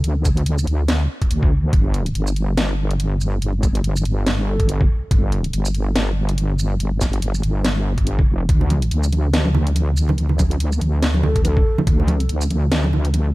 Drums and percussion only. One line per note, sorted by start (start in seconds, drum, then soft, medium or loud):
0.04 closed hi-hat medium
0.25 kick medium
0.25 closed hi-hat medium
0.25 shaker medium
0.37 closed hi-hat medium
0.46 closed hi-hat medium
0.58 shaker medium
0.67 closed hi-hat medium
0.88 snare loud
0.88 closed hi-hat medium
1.22 kick medium
1.22 closed hi-hat medium
1.31 closed hi-hat medium
1.43 kick loud
1.73 kick loud
1.73 closed hi-hat medium
1.94 closed hi-hat medium
2.06 closed hi-hat medium
2.15 closed hi-hat medium
2.27 shaker medium
2.36 closed hi-hat medium
2.58 snare loud
2.58 closed hi-hat medium
2.91 closed hi-hat medium
3.00 closed hi-hat medium
3.21 shaker medium
3.42 closed hi-hat medium
3.63 kick medium
3.63 closed hi-hat medium
3.63 shaker medium
3.75 closed hi-hat medium
3.84 closed hi-hat medium
3.96 shaker medium
4.05 closed hi-hat medium
4.27 snare loud
4.27 closed hi-hat medium
4.60 kick medium
4.60 closed hi-hat medium
4.69 closed hi-hat medium
4.81 kick loud
5.11 kick loud
5.11 closed hi-hat medium
5.32 closed hi-hat medium
5.44 closed hi-hat medium
5.53 closed hi-hat medium
5.65 shaker medium
5.74 closed hi-hat medium
5.96 snare loud
5.96 closed hi-hat medium
6.29 closed hi-hat medium
6.38 closed hi-hat medium
6.59 shaker medium
6.80 closed hi-hat medium
7.01 kick medium
7.01 snare medium
7.01 closed hi-hat medium
7.01 shaker medium
7.13 closed hi-hat medium
7.22 closed hi-hat medium
7.34 shaker medium
7.43 closed hi-hat medium
7.65 snare loud
7.65 closed hi-hat medium
7.98 kick medium
7.98 closed hi-hat medium
8.07 closed hi-hat medium
8.19 kick loud
8.49 kick loud
8.49 closed hi-hat medium
8.61 low conga medium
8.70 closed hi-hat medium
8.70 high conga medium
8.82 closed hi-hat medium
8.91 closed hi-hat medium
9.03 shaker medium
9.12 closed hi-hat medium
9.12 high conga medium
9.33 snare loud
9.33 closed hi-hat medium
9.45 high conga medium
9.54 low conga loud
9.67 closed hi-hat medium
9.75 closed hi-hat medium
9.75 high conga medium
9.97 shaker medium
10.09 high conga medium
10.09 low conga loud
10.18 closed hi-hat medium
10.29 low conga medium
10.39 kick medium
10.39 closed hi-hat medium
10.39 high conga loud
10.39 shaker medium
10.51 closed hi-hat medium
10.60 closed hi-hat medium
10.72 shaker medium
10.81 closed hi-hat medium
10.81 high conga medium
11.03 snare loud
11.03 closed hi-hat medium
11.14 high conga medium
11.23 low conga loud
11.36 kick medium
11.36 closed hi-hat medium
11.45 closed hi-hat medium
11.45 high conga medium
11.57 kick loud
11.78 high conga loud
11.78 low conga loud
11.87 kick loud
11.87 closed hi-hat medium
12.00 low conga medium
12.08 closed hi-hat medium
12.08 high conga loud
12.20 closed hi-hat medium
12.29 closed hi-hat medium
12.41 shaker medium
12.50 closed hi-hat medium
12.50 high conga medium
12.72 snare loud
12.72 closed hi-hat medium
12.84 high conga medium
12.93 low conga medium
13.05 closed hi-hat medium
13.14 closed hi-hat medium
13.14 high conga medium